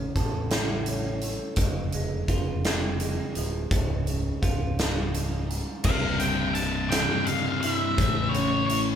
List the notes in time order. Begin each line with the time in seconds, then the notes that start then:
Already playing: A2 C#4
0.16 A1 A4, kick, closed hi-hat
0.50 E4, snare, closed hi-hat
0.86 C#4, closed hi-hat
1.21 A3, closed hi-hat
1.56 F1 F2, kick, closed hi-hat
1.92 F1 G#3, closed hi-hat
2.28 F1 F4, kick, closed hi-hat
2.64 C4, snare, closed hi-hat
3.00 G#3, closed hi-hat
3.35 D1 F3, closed hi-hat
3.71 C#1 C#2, kick, closed hi-hat
4.07 C#3, closed hi-hat
4.42 C#1 F4, kick, closed hi-hat
4.79 F3, snare, closed hi-hat
5.14 C#3, closed hi-hat
5.49 G#2, closed hi-hat
5.84 C1 C2 G2 C3 F5, kick, crash
6.19 C3 G5, closed hi-hat
6.54 G3 A5, closed hi-hat
6.90 G2 C3 G5, snare, closed hi-hat
6.94 C2
7.25 G3 F5, closed hi-hat
7.61 E4 F5, closed hi-hat
7.72 E5
7.97 A1 A2 E3 A3, kick, closed hi-hat
8.29 C#5
8.34 C#4, closed hi-hat
8.66 E4 C#5, closed hi-hat